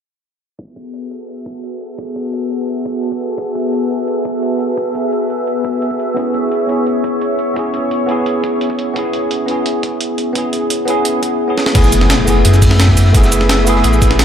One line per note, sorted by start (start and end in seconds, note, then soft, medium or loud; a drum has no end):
0.59 11.36 B3 medium
0.59 6.13 F#4 medium
0.59 11.36 G#4 medium
0.59 6.13 A4 medium
0.59 11.36 E5 medium
0.59 kick loud
0.59 closed hi-hat medium
0.76 kick medium
0.76 closed hi-hat medium
0.94 closed hi-hat medium
1.11 closed hi-hat medium
1.29 closed hi-hat medium
1.46 kick loud
1.46 closed hi-hat medium
1.63 closed hi-hat medium
1.81 closed hi-hat medium
1.98 kick loud
1.98 closed hi-hat medium
2.16 kick medium
2.16 closed hi-hat medium
2.33 closed hi-hat medium
2.51 closed hi-hat medium
2.68 closed hi-hat medium
2.86 kick loud
2.86 closed hi-hat medium
3.03 closed hi-hat medium
3.12 kick medium
3.20 closed hi-hat medium
3.38 kick loud
3.38 closed hi-hat medium
3.55 kick medium
3.55 closed hi-hat medium
3.73 closed hi-hat medium
3.90 closed hi-hat medium
4.08 closed hi-hat medium
4.25 kick loud
4.25 closed hi-hat medium
4.43 closed hi-hat medium
4.60 closed hi-hat medium
4.77 kick loud
4.77 closed hi-hat medium
4.95 kick medium
4.95 closed hi-hat medium
5.12 closed hi-hat medium
5.30 closed hi-hat medium
5.47 closed hi-hat medium
5.65 kick loud
5.65 closed hi-hat medium
5.82 closed hi-hat medium
5.91 kick medium
6.00 closed hi-hat medium
6.14 6.66 B3 medium
6.14 6.67 C#4 medium
6.14 6.68 E4 medium
6.14 11.36 C#5 medium
6.14 kick loud
6.14 closed hi-hat medium
6.19 6.68 G#4 medium
6.34 kick medium
6.34 closed hi-hat medium
6.52 closed hi-hat medium
6.67 7.53 B3 medium
6.67 7.54 C#4 medium
6.67 7.55 E4 medium
6.67 closed hi-hat medium
6.72 7.56 G#4 medium
6.87 closed hi-hat medium
7.04 kick loud
7.04 closed hi-hat medium
7.22 closed hi-hat medium
7.39 closed hi-hat medium
7.54 8.05 B3 medium
7.54 8.06 C#4 medium
7.54 8.07 E4 medium
7.54 kick loud
7.54 closed hi-hat medium
7.59 8.08 G#4 medium
7.74 kick medium
7.74 closed hi-hat medium
7.91 closed hi-hat medium
8.06 8.93 B3 medium
8.06 8.94 C#4 medium
8.06 8.94 E4 medium
8.06 closed hi-hat medium
8.11 8.95 G#4 loud
8.26 closed hi-hat medium
8.44 kick loud
8.44 closed hi-hat medium
8.61 closed hi-hat medium
8.70 kick medium
8.79 closed hi-hat medium
8.94 9.45 B3 medium
8.94 9.46 C#4 medium
8.94 9.47 E4 medium
8.94 kick loud
8.94 closed hi-hat medium
8.99 9.48 G#4 medium
9.13 kick medium
9.13 closed hi-hat medium
9.31 closed hi-hat medium
9.46 10.32 B3 medium
9.46 10.33 C#4 medium
9.46 10.34 E4 medium
9.46 closed hi-hat medium
9.51 10.35 G#4 medium
9.66 closed hi-hat medium
9.83 kick medium
9.83 closed hi-hat medium
10.01 closed hi-hat medium
10.18 closed hi-hat medium
10.33 10.84 B3 medium
10.33 10.85 C#4 medium
10.33 10.86 E4 medium
10.33 kick loud
10.33 closed hi-hat medium
10.38 10.87 G#4 medium
10.53 kick medium
10.53 closed hi-hat medium
10.70 closed hi-hat medium
10.85 11.46 B3 medium
10.85 11.47 C#4 medium
10.85 11.48 E4 medium
10.85 closed hi-hat medium
10.90 11.48 G#4 loud
11.05 closed hi-hat medium
11.23 kick loud
11.23 closed hi-hat medium
11.48 11.72 B3 medium
11.48 11.73 C#4 medium
11.48 11.73 E4 medium
11.48 11.74 G#4 medium
11.58 snare medium
11.66 snare medium
11.73 12.43 F#1 loud
11.73 12.24 A3 medium
11.73 12.25 B3 medium
11.73 12.26 E4 medium
11.73 14.25 G#4 medium
11.73 14.25 B4 medium
11.73 14.25 E5 medium
11.73 kick loud
11.73 closed hi-hat loud
11.73 crash loud
11.73 ride medium
11.73 impact medium
11.78 12.27 G#4 loud
11.84 shaker soft
11.92 closed hi-hat medium
11.92 ride medium
11.92 shaker medium
12.01 snare soft
12.10 snare loud
12.10 closed hi-hat medium
12.10 ride medium
12.25 13.11 A3 medium
12.25 13.12 B3 medium
12.25 13.13 E4 medium
12.25 open hi-hat medium
12.25 ride medium
12.25 shaker medium
12.30 13.14 G#4 medium
12.45 12.96 F#2 medium
12.45 closed hi-hat loud
12.45 ride medium
12.54 snare soft
12.54 shaker soft
12.62 kick loud
12.62 closed hi-hat medium
12.62 open hi-hat medium
12.62 shaker medium
12.71 snare medium
12.79 snare loud
12.79 closed hi-hat loud
12.79 ride medium
12.88 kick medium
12.88 snare medium
12.97 13.13 F#2 medium
12.97 open hi-hat medium
12.97 ride medium
12.97 shaker medium
13.06 snare soft
13.12 13.83 F#1 loud
13.12 13.63 A3 medium
13.12 13.64 B3 medium
13.12 13.65 E4 medium
13.12 kick loud
13.12 closed hi-hat medium
13.12 ride medium
13.17 13.66 G#4 medium
13.23 snare medium
13.23 shaker soft
13.32 closed hi-hat medium
13.32 ride medium
13.32 shaker medium
13.41 snare soft
13.49 snare loud
13.49 closed hi-hat medium
13.49 ride medium
13.59 snare soft
13.64 14.25 A3 medium
13.64 14.25 B3 medium
13.64 14.25 E4 medium
13.64 open hi-hat medium
13.64 ride medium
13.64 shaker medium
13.69 14.25 G#4 loud
13.76 snare soft
13.84 14.25 A1 loud
13.84 closed hi-hat loud
13.84 ride medium
13.93 shaker soft
14.02 kick loud
14.02 closed hi-hat medium
14.02 ride medium
14.02 shaker medium
14.11 snare medium
14.19 snare loud
14.19 closed hi-hat medium
14.19 ride medium